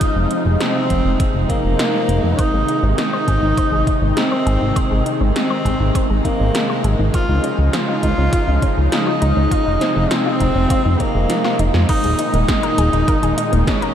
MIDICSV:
0, 0, Header, 1, 6, 480
1, 0, Start_track
1, 0, Key_signature, -4, "major"
1, 0, Tempo, 594059
1, 9, Time_signature, 4, 2, 24, 8
1, 11264, End_track
2, 0, Start_track
2, 0, Title_t, "Synth arpeggio sound"
2, 0, Program_c, 0, 84
2, 1929, Note_on_c, 0, 72, 106
2, 1997, Note_off_c, 0, 72, 0
2, 2050, Note_on_c, 0, 68, 75
2, 2151, Note_off_c, 0, 68, 0
2, 2171, Note_on_c, 0, 63, 78
2, 2211, Note_off_c, 0, 63, 0
2, 2291, Note_on_c, 0, 60, 75
2, 2358, Note_off_c, 0, 60, 0
2, 2411, Note_on_c, 0, 56, 81
2, 2512, Note_off_c, 0, 56, 0
2, 2532, Note_on_c, 0, 72, 103
2, 2632, Note_off_c, 0, 72, 0
2, 2650, Note_on_c, 0, 68, 100
2, 2717, Note_off_c, 0, 68, 0
2, 2770, Note_on_c, 0, 63, 74
2, 2837, Note_off_c, 0, 63, 0
2, 2890, Note_on_c, 0, 72, 99
2, 2957, Note_off_c, 0, 72, 0
2, 3010, Note_on_c, 0, 68, 77
2, 3111, Note_off_c, 0, 68, 0
2, 3128, Note_on_c, 0, 63, 79
2, 3169, Note_off_c, 0, 63, 0
2, 3250, Note_on_c, 0, 60, 73
2, 3317, Note_off_c, 0, 60, 0
2, 3369, Note_on_c, 0, 56, 83
2, 3471, Note_off_c, 0, 56, 0
2, 3489, Note_on_c, 0, 72, 98
2, 3591, Note_off_c, 0, 72, 0
2, 3608, Note_on_c, 0, 68, 100
2, 3676, Note_off_c, 0, 68, 0
2, 3728, Note_on_c, 0, 63, 74
2, 3796, Note_off_c, 0, 63, 0
2, 3846, Note_on_c, 0, 72, 100
2, 3915, Note_off_c, 0, 72, 0
2, 3966, Note_on_c, 0, 68, 74
2, 4069, Note_off_c, 0, 68, 0
2, 4086, Note_on_c, 0, 63, 74
2, 4128, Note_off_c, 0, 63, 0
2, 4207, Note_on_c, 0, 60, 74
2, 4276, Note_off_c, 0, 60, 0
2, 4327, Note_on_c, 0, 56, 83
2, 4430, Note_off_c, 0, 56, 0
2, 4447, Note_on_c, 0, 72, 103
2, 4550, Note_off_c, 0, 72, 0
2, 4568, Note_on_c, 0, 68, 105
2, 4636, Note_off_c, 0, 68, 0
2, 4688, Note_on_c, 0, 63, 78
2, 4756, Note_off_c, 0, 63, 0
2, 4811, Note_on_c, 0, 72, 99
2, 4878, Note_off_c, 0, 72, 0
2, 4930, Note_on_c, 0, 68, 79
2, 5031, Note_off_c, 0, 68, 0
2, 5049, Note_on_c, 0, 63, 77
2, 5089, Note_off_c, 0, 63, 0
2, 5170, Note_on_c, 0, 60, 72
2, 5237, Note_off_c, 0, 60, 0
2, 5291, Note_on_c, 0, 56, 83
2, 5392, Note_off_c, 0, 56, 0
2, 5411, Note_on_c, 0, 72, 97
2, 5512, Note_off_c, 0, 72, 0
2, 5532, Note_on_c, 0, 68, 95
2, 5598, Note_off_c, 0, 68, 0
2, 5653, Note_on_c, 0, 63, 75
2, 5719, Note_off_c, 0, 63, 0
2, 5772, Note_on_c, 0, 65, 108
2, 5838, Note_off_c, 0, 65, 0
2, 5892, Note_on_c, 0, 63, 78
2, 5992, Note_off_c, 0, 63, 0
2, 6011, Note_on_c, 0, 61, 75
2, 6050, Note_off_c, 0, 61, 0
2, 6132, Note_on_c, 0, 56, 74
2, 6198, Note_off_c, 0, 56, 0
2, 6250, Note_on_c, 0, 53, 80
2, 6351, Note_off_c, 0, 53, 0
2, 6371, Note_on_c, 0, 65, 105
2, 6472, Note_off_c, 0, 65, 0
2, 6490, Note_on_c, 0, 63, 105
2, 6557, Note_off_c, 0, 63, 0
2, 6609, Note_on_c, 0, 61, 76
2, 6677, Note_off_c, 0, 61, 0
2, 6729, Note_on_c, 0, 65, 102
2, 6797, Note_off_c, 0, 65, 0
2, 6849, Note_on_c, 0, 63, 79
2, 6950, Note_off_c, 0, 63, 0
2, 6969, Note_on_c, 0, 61, 76
2, 7009, Note_off_c, 0, 61, 0
2, 7088, Note_on_c, 0, 56, 74
2, 7156, Note_off_c, 0, 56, 0
2, 7209, Note_on_c, 0, 53, 82
2, 7311, Note_off_c, 0, 53, 0
2, 7328, Note_on_c, 0, 65, 101
2, 7430, Note_off_c, 0, 65, 0
2, 7447, Note_on_c, 0, 63, 103
2, 7516, Note_off_c, 0, 63, 0
2, 7566, Note_on_c, 0, 61, 75
2, 7635, Note_off_c, 0, 61, 0
2, 7686, Note_on_c, 0, 65, 105
2, 7755, Note_off_c, 0, 65, 0
2, 7807, Note_on_c, 0, 63, 72
2, 7910, Note_off_c, 0, 63, 0
2, 7927, Note_on_c, 0, 60, 76
2, 7969, Note_off_c, 0, 60, 0
2, 8048, Note_on_c, 0, 56, 75
2, 8116, Note_off_c, 0, 56, 0
2, 8169, Note_on_c, 0, 53, 84
2, 8271, Note_off_c, 0, 53, 0
2, 8289, Note_on_c, 0, 65, 101
2, 8391, Note_off_c, 0, 65, 0
2, 8409, Note_on_c, 0, 63, 103
2, 8477, Note_off_c, 0, 63, 0
2, 8530, Note_on_c, 0, 60, 77
2, 8597, Note_off_c, 0, 60, 0
2, 8650, Note_on_c, 0, 65, 99
2, 8717, Note_off_c, 0, 65, 0
2, 8769, Note_on_c, 0, 63, 79
2, 8871, Note_off_c, 0, 63, 0
2, 8889, Note_on_c, 0, 60, 80
2, 8930, Note_off_c, 0, 60, 0
2, 9010, Note_on_c, 0, 56, 77
2, 9077, Note_off_c, 0, 56, 0
2, 9129, Note_on_c, 0, 53, 85
2, 9231, Note_off_c, 0, 53, 0
2, 9249, Note_on_c, 0, 65, 101
2, 9351, Note_off_c, 0, 65, 0
2, 9368, Note_on_c, 0, 63, 100
2, 9436, Note_off_c, 0, 63, 0
2, 9488, Note_on_c, 0, 60, 76
2, 9556, Note_off_c, 0, 60, 0
2, 9608, Note_on_c, 0, 70, 105
2, 9676, Note_off_c, 0, 70, 0
2, 9729, Note_on_c, 0, 68, 78
2, 9831, Note_off_c, 0, 68, 0
2, 9849, Note_on_c, 0, 63, 78
2, 9890, Note_off_c, 0, 63, 0
2, 9968, Note_on_c, 0, 58, 76
2, 10036, Note_off_c, 0, 58, 0
2, 10087, Note_on_c, 0, 56, 86
2, 10190, Note_off_c, 0, 56, 0
2, 10207, Note_on_c, 0, 70, 107
2, 10310, Note_off_c, 0, 70, 0
2, 10327, Note_on_c, 0, 68, 110
2, 10396, Note_off_c, 0, 68, 0
2, 10448, Note_on_c, 0, 63, 76
2, 10516, Note_off_c, 0, 63, 0
2, 10568, Note_on_c, 0, 70, 103
2, 10637, Note_off_c, 0, 70, 0
2, 10688, Note_on_c, 0, 68, 81
2, 10790, Note_off_c, 0, 68, 0
2, 10806, Note_on_c, 0, 63, 76
2, 10848, Note_off_c, 0, 63, 0
2, 10927, Note_on_c, 0, 58, 75
2, 10996, Note_off_c, 0, 58, 0
2, 11047, Note_on_c, 0, 56, 82
2, 11150, Note_off_c, 0, 56, 0
2, 11167, Note_on_c, 0, 70, 101
2, 11264, Note_off_c, 0, 70, 0
2, 11264, End_track
3, 0, Start_track
3, 0, Title_t, "Tenor saxophone"
3, 0, Program_c, 1, 66
3, 0, Note_on_c, 1, 63, 100
3, 392, Note_off_c, 1, 63, 0
3, 490, Note_on_c, 1, 60, 96
3, 1114, Note_off_c, 1, 60, 0
3, 1207, Note_on_c, 1, 58, 101
3, 1929, Note_on_c, 1, 63, 99
3, 1941, Note_off_c, 1, 58, 0
3, 2311, Note_off_c, 1, 63, 0
3, 2406, Note_on_c, 1, 63, 100
3, 3272, Note_off_c, 1, 63, 0
3, 3366, Note_on_c, 1, 60, 105
3, 4232, Note_off_c, 1, 60, 0
3, 4329, Note_on_c, 1, 60, 98
3, 4953, Note_off_c, 1, 60, 0
3, 5051, Note_on_c, 1, 58, 100
3, 5674, Note_off_c, 1, 58, 0
3, 5771, Note_on_c, 1, 65, 100
3, 6152, Note_off_c, 1, 65, 0
3, 6249, Note_on_c, 1, 65, 103
3, 7113, Note_off_c, 1, 65, 0
3, 7210, Note_on_c, 1, 63, 103
3, 8168, Note_on_c, 1, 60, 102
3, 8180, Note_off_c, 1, 63, 0
3, 8890, Note_on_c, 1, 58, 103
3, 8902, Note_off_c, 1, 60, 0
3, 9513, Note_off_c, 1, 58, 0
3, 9609, Note_on_c, 1, 63, 106
3, 9991, Note_off_c, 1, 63, 0
3, 10087, Note_on_c, 1, 63, 104
3, 10952, Note_off_c, 1, 63, 0
3, 11050, Note_on_c, 1, 61, 101
3, 11264, Note_off_c, 1, 61, 0
3, 11264, End_track
4, 0, Start_track
4, 0, Title_t, "Analog synth pad"
4, 0, Program_c, 2, 89
4, 0, Note_on_c, 2, 53, 72
4, 0, Note_on_c, 2, 56, 71
4, 0, Note_on_c, 2, 63, 86
4, 11, Note_on_c, 2, 48, 78
4, 1895, Note_off_c, 2, 53, 0
4, 1898, Note_off_c, 2, 56, 0
4, 1932, Note_on_c, 2, 51, 73
4, 1932, Note_on_c, 2, 56, 72
4, 5738, Note_off_c, 2, 48, 0
4, 5738, Note_off_c, 2, 51, 0
4, 5738, Note_off_c, 2, 63, 0
4, 5768, Note_on_c, 2, 63, 88
4, 5769, Note_on_c, 2, 49, 80
4, 5769, Note_on_c, 2, 53, 72
4, 7670, Note_off_c, 2, 49, 0
4, 7688, Note_on_c, 2, 48, 80
4, 9576, Note_off_c, 2, 63, 0
4, 9577, Note_off_c, 2, 53, 0
4, 9578, Note_off_c, 2, 56, 0
4, 9589, Note_off_c, 2, 48, 0
4, 9611, Note_on_c, 2, 46, 79
4, 9611, Note_on_c, 2, 56, 75
4, 9612, Note_on_c, 2, 51, 74
4, 9612, Note_on_c, 2, 63, 91
4, 11264, Note_off_c, 2, 46, 0
4, 11264, Note_off_c, 2, 51, 0
4, 11264, Note_off_c, 2, 56, 0
4, 11264, Note_off_c, 2, 63, 0
4, 11264, End_track
5, 0, Start_track
5, 0, Title_t, "Analog synth bass"
5, 0, Program_c, 3, 38
5, 128, Note_on_c, 3, 29, 79
5, 216, Note_off_c, 3, 29, 0
5, 366, Note_on_c, 3, 29, 82
5, 455, Note_off_c, 3, 29, 0
5, 728, Note_on_c, 3, 29, 89
5, 816, Note_off_c, 3, 29, 0
5, 847, Note_on_c, 3, 29, 81
5, 935, Note_off_c, 3, 29, 0
5, 1085, Note_on_c, 3, 29, 74
5, 1174, Note_off_c, 3, 29, 0
5, 1328, Note_on_c, 3, 29, 83
5, 1416, Note_off_c, 3, 29, 0
5, 1687, Note_on_c, 3, 29, 91
5, 1775, Note_off_c, 3, 29, 0
5, 1807, Note_on_c, 3, 29, 79
5, 1895, Note_off_c, 3, 29, 0
5, 2048, Note_on_c, 3, 32, 78
5, 2136, Note_off_c, 3, 32, 0
5, 2287, Note_on_c, 3, 32, 81
5, 2376, Note_off_c, 3, 32, 0
5, 2648, Note_on_c, 3, 32, 94
5, 2736, Note_off_c, 3, 32, 0
5, 2767, Note_on_c, 3, 32, 79
5, 2855, Note_off_c, 3, 32, 0
5, 3006, Note_on_c, 3, 32, 74
5, 3095, Note_off_c, 3, 32, 0
5, 3247, Note_on_c, 3, 32, 83
5, 3335, Note_off_c, 3, 32, 0
5, 3609, Note_on_c, 3, 32, 92
5, 3696, Note_off_c, 3, 32, 0
5, 3728, Note_on_c, 3, 32, 80
5, 3816, Note_off_c, 3, 32, 0
5, 3969, Note_on_c, 3, 32, 77
5, 4056, Note_off_c, 3, 32, 0
5, 4209, Note_on_c, 3, 32, 84
5, 4296, Note_off_c, 3, 32, 0
5, 4567, Note_on_c, 3, 32, 93
5, 4655, Note_off_c, 3, 32, 0
5, 4687, Note_on_c, 3, 32, 80
5, 4776, Note_off_c, 3, 32, 0
5, 4929, Note_on_c, 3, 32, 77
5, 5017, Note_off_c, 3, 32, 0
5, 5169, Note_on_c, 3, 32, 84
5, 5257, Note_off_c, 3, 32, 0
5, 5529, Note_on_c, 3, 32, 95
5, 5617, Note_off_c, 3, 32, 0
5, 5650, Note_on_c, 3, 32, 80
5, 5737, Note_off_c, 3, 32, 0
5, 5890, Note_on_c, 3, 37, 78
5, 5977, Note_off_c, 3, 37, 0
5, 6130, Note_on_c, 3, 37, 83
5, 6217, Note_off_c, 3, 37, 0
5, 6488, Note_on_c, 3, 37, 89
5, 6576, Note_off_c, 3, 37, 0
5, 6609, Note_on_c, 3, 37, 81
5, 6697, Note_off_c, 3, 37, 0
5, 6849, Note_on_c, 3, 37, 75
5, 6937, Note_off_c, 3, 37, 0
5, 7091, Note_on_c, 3, 37, 81
5, 7178, Note_off_c, 3, 37, 0
5, 7451, Note_on_c, 3, 37, 94
5, 7537, Note_off_c, 3, 37, 0
5, 7569, Note_on_c, 3, 37, 81
5, 7656, Note_off_c, 3, 37, 0
5, 7809, Note_on_c, 3, 29, 77
5, 7897, Note_off_c, 3, 29, 0
5, 8049, Note_on_c, 3, 29, 82
5, 8136, Note_off_c, 3, 29, 0
5, 8407, Note_on_c, 3, 29, 91
5, 8496, Note_off_c, 3, 29, 0
5, 8528, Note_on_c, 3, 29, 79
5, 8616, Note_off_c, 3, 29, 0
5, 8770, Note_on_c, 3, 41, 76
5, 8857, Note_off_c, 3, 41, 0
5, 9009, Note_on_c, 3, 29, 81
5, 9096, Note_off_c, 3, 29, 0
5, 9368, Note_on_c, 3, 29, 91
5, 9456, Note_off_c, 3, 29, 0
5, 9487, Note_on_c, 3, 41, 81
5, 9575, Note_off_c, 3, 41, 0
5, 9730, Note_on_c, 3, 27, 77
5, 9817, Note_off_c, 3, 27, 0
5, 9967, Note_on_c, 3, 27, 84
5, 10055, Note_off_c, 3, 27, 0
5, 10328, Note_on_c, 3, 27, 92
5, 10416, Note_off_c, 3, 27, 0
5, 10448, Note_on_c, 3, 27, 82
5, 10536, Note_off_c, 3, 27, 0
5, 10690, Note_on_c, 3, 27, 77
5, 10777, Note_off_c, 3, 27, 0
5, 10928, Note_on_c, 3, 27, 85
5, 11016, Note_off_c, 3, 27, 0
5, 11264, End_track
6, 0, Start_track
6, 0, Title_t, "Drums"
6, 8, Note_on_c, 9, 36, 117
6, 8, Note_on_c, 9, 42, 88
6, 89, Note_off_c, 9, 36, 0
6, 89, Note_off_c, 9, 42, 0
6, 248, Note_on_c, 9, 42, 62
6, 328, Note_off_c, 9, 42, 0
6, 489, Note_on_c, 9, 38, 115
6, 489, Note_on_c, 9, 42, 83
6, 569, Note_off_c, 9, 38, 0
6, 569, Note_off_c, 9, 42, 0
6, 728, Note_on_c, 9, 36, 62
6, 729, Note_on_c, 9, 42, 62
6, 809, Note_off_c, 9, 36, 0
6, 809, Note_off_c, 9, 42, 0
6, 968, Note_on_c, 9, 36, 126
6, 969, Note_on_c, 9, 42, 84
6, 1049, Note_off_c, 9, 36, 0
6, 1050, Note_off_c, 9, 42, 0
6, 1208, Note_on_c, 9, 36, 60
6, 1210, Note_on_c, 9, 42, 65
6, 1289, Note_off_c, 9, 36, 0
6, 1291, Note_off_c, 9, 42, 0
6, 1449, Note_on_c, 9, 38, 119
6, 1449, Note_on_c, 9, 42, 86
6, 1530, Note_off_c, 9, 38, 0
6, 1530, Note_off_c, 9, 42, 0
6, 1689, Note_on_c, 9, 42, 64
6, 1770, Note_off_c, 9, 42, 0
6, 1928, Note_on_c, 9, 36, 112
6, 1928, Note_on_c, 9, 42, 85
6, 2009, Note_off_c, 9, 36, 0
6, 2009, Note_off_c, 9, 42, 0
6, 2169, Note_on_c, 9, 42, 62
6, 2250, Note_off_c, 9, 42, 0
6, 2409, Note_on_c, 9, 38, 113
6, 2409, Note_on_c, 9, 42, 83
6, 2489, Note_off_c, 9, 38, 0
6, 2489, Note_off_c, 9, 42, 0
6, 2648, Note_on_c, 9, 36, 61
6, 2649, Note_on_c, 9, 42, 60
6, 2729, Note_off_c, 9, 36, 0
6, 2730, Note_off_c, 9, 42, 0
6, 2888, Note_on_c, 9, 36, 117
6, 2889, Note_on_c, 9, 42, 86
6, 2969, Note_off_c, 9, 36, 0
6, 2970, Note_off_c, 9, 42, 0
6, 3128, Note_on_c, 9, 36, 100
6, 3129, Note_on_c, 9, 42, 64
6, 3209, Note_off_c, 9, 36, 0
6, 3210, Note_off_c, 9, 42, 0
6, 3368, Note_on_c, 9, 38, 114
6, 3368, Note_on_c, 9, 42, 84
6, 3449, Note_off_c, 9, 38, 0
6, 3449, Note_off_c, 9, 42, 0
6, 3610, Note_on_c, 9, 42, 62
6, 3690, Note_off_c, 9, 42, 0
6, 3848, Note_on_c, 9, 36, 110
6, 3849, Note_on_c, 9, 42, 86
6, 3928, Note_off_c, 9, 36, 0
6, 3930, Note_off_c, 9, 42, 0
6, 4090, Note_on_c, 9, 42, 61
6, 4171, Note_off_c, 9, 42, 0
6, 4330, Note_on_c, 9, 38, 110
6, 4330, Note_on_c, 9, 42, 80
6, 4411, Note_off_c, 9, 38, 0
6, 4411, Note_off_c, 9, 42, 0
6, 4568, Note_on_c, 9, 36, 58
6, 4571, Note_on_c, 9, 42, 62
6, 4648, Note_off_c, 9, 36, 0
6, 4652, Note_off_c, 9, 42, 0
6, 4808, Note_on_c, 9, 36, 111
6, 4810, Note_on_c, 9, 42, 86
6, 4889, Note_off_c, 9, 36, 0
6, 4891, Note_off_c, 9, 42, 0
6, 5048, Note_on_c, 9, 36, 57
6, 5051, Note_on_c, 9, 42, 61
6, 5129, Note_off_c, 9, 36, 0
6, 5131, Note_off_c, 9, 42, 0
6, 5290, Note_on_c, 9, 38, 110
6, 5290, Note_on_c, 9, 42, 86
6, 5371, Note_off_c, 9, 38, 0
6, 5371, Note_off_c, 9, 42, 0
6, 5530, Note_on_c, 9, 42, 64
6, 5610, Note_off_c, 9, 42, 0
6, 5769, Note_on_c, 9, 36, 108
6, 5769, Note_on_c, 9, 42, 86
6, 5849, Note_off_c, 9, 36, 0
6, 5849, Note_off_c, 9, 42, 0
6, 6010, Note_on_c, 9, 42, 64
6, 6091, Note_off_c, 9, 42, 0
6, 6249, Note_on_c, 9, 38, 102
6, 6249, Note_on_c, 9, 42, 86
6, 6330, Note_off_c, 9, 38, 0
6, 6330, Note_off_c, 9, 42, 0
6, 6488, Note_on_c, 9, 36, 58
6, 6489, Note_on_c, 9, 42, 61
6, 6569, Note_off_c, 9, 36, 0
6, 6570, Note_off_c, 9, 42, 0
6, 6728, Note_on_c, 9, 36, 113
6, 6729, Note_on_c, 9, 42, 86
6, 6809, Note_off_c, 9, 36, 0
6, 6810, Note_off_c, 9, 42, 0
6, 6968, Note_on_c, 9, 36, 97
6, 6969, Note_on_c, 9, 42, 64
6, 7048, Note_off_c, 9, 36, 0
6, 7050, Note_off_c, 9, 42, 0
6, 7209, Note_on_c, 9, 38, 107
6, 7209, Note_on_c, 9, 42, 85
6, 7290, Note_off_c, 9, 38, 0
6, 7290, Note_off_c, 9, 42, 0
6, 7449, Note_on_c, 9, 42, 64
6, 7529, Note_off_c, 9, 42, 0
6, 7687, Note_on_c, 9, 36, 111
6, 7689, Note_on_c, 9, 42, 90
6, 7768, Note_off_c, 9, 36, 0
6, 7770, Note_off_c, 9, 42, 0
6, 7928, Note_on_c, 9, 38, 59
6, 7928, Note_on_c, 9, 42, 65
6, 8009, Note_off_c, 9, 38, 0
6, 8009, Note_off_c, 9, 42, 0
6, 8168, Note_on_c, 9, 38, 109
6, 8168, Note_on_c, 9, 42, 89
6, 8249, Note_off_c, 9, 38, 0
6, 8249, Note_off_c, 9, 42, 0
6, 8407, Note_on_c, 9, 36, 58
6, 8407, Note_on_c, 9, 42, 65
6, 8488, Note_off_c, 9, 36, 0
6, 8488, Note_off_c, 9, 42, 0
6, 8647, Note_on_c, 9, 36, 115
6, 8647, Note_on_c, 9, 42, 94
6, 8728, Note_off_c, 9, 36, 0
6, 8728, Note_off_c, 9, 42, 0
6, 8888, Note_on_c, 9, 36, 56
6, 8888, Note_on_c, 9, 42, 67
6, 8969, Note_off_c, 9, 36, 0
6, 8969, Note_off_c, 9, 42, 0
6, 9128, Note_on_c, 9, 38, 58
6, 9128, Note_on_c, 9, 42, 91
6, 9208, Note_off_c, 9, 38, 0
6, 9208, Note_off_c, 9, 42, 0
6, 9248, Note_on_c, 9, 38, 62
6, 9329, Note_off_c, 9, 38, 0
6, 9367, Note_on_c, 9, 42, 65
6, 9448, Note_off_c, 9, 42, 0
6, 9487, Note_on_c, 9, 38, 83
6, 9568, Note_off_c, 9, 38, 0
6, 9606, Note_on_c, 9, 42, 69
6, 9606, Note_on_c, 9, 49, 104
6, 9608, Note_on_c, 9, 36, 120
6, 9687, Note_off_c, 9, 42, 0
6, 9687, Note_off_c, 9, 49, 0
6, 9689, Note_off_c, 9, 36, 0
6, 9727, Note_on_c, 9, 42, 42
6, 9808, Note_off_c, 9, 42, 0
6, 9847, Note_on_c, 9, 42, 97
6, 9928, Note_off_c, 9, 42, 0
6, 9968, Note_on_c, 9, 42, 42
6, 10049, Note_off_c, 9, 42, 0
6, 10088, Note_on_c, 9, 36, 119
6, 10088, Note_on_c, 9, 38, 114
6, 10088, Note_on_c, 9, 42, 65
6, 10169, Note_off_c, 9, 36, 0
6, 10169, Note_off_c, 9, 38, 0
6, 10169, Note_off_c, 9, 42, 0
6, 10208, Note_on_c, 9, 42, 40
6, 10289, Note_off_c, 9, 42, 0
6, 10328, Note_on_c, 9, 42, 92
6, 10408, Note_off_c, 9, 42, 0
6, 10449, Note_on_c, 9, 42, 41
6, 10530, Note_off_c, 9, 42, 0
6, 10568, Note_on_c, 9, 36, 122
6, 10569, Note_on_c, 9, 42, 71
6, 10649, Note_off_c, 9, 36, 0
6, 10649, Note_off_c, 9, 42, 0
6, 10690, Note_on_c, 9, 42, 43
6, 10771, Note_off_c, 9, 42, 0
6, 10810, Note_on_c, 9, 42, 99
6, 10890, Note_off_c, 9, 42, 0
6, 10931, Note_on_c, 9, 42, 44
6, 11012, Note_off_c, 9, 42, 0
6, 11048, Note_on_c, 9, 36, 120
6, 11050, Note_on_c, 9, 38, 120
6, 11050, Note_on_c, 9, 42, 70
6, 11129, Note_off_c, 9, 36, 0
6, 11131, Note_off_c, 9, 38, 0
6, 11131, Note_off_c, 9, 42, 0
6, 11169, Note_on_c, 9, 42, 42
6, 11250, Note_off_c, 9, 42, 0
6, 11264, End_track
0, 0, End_of_file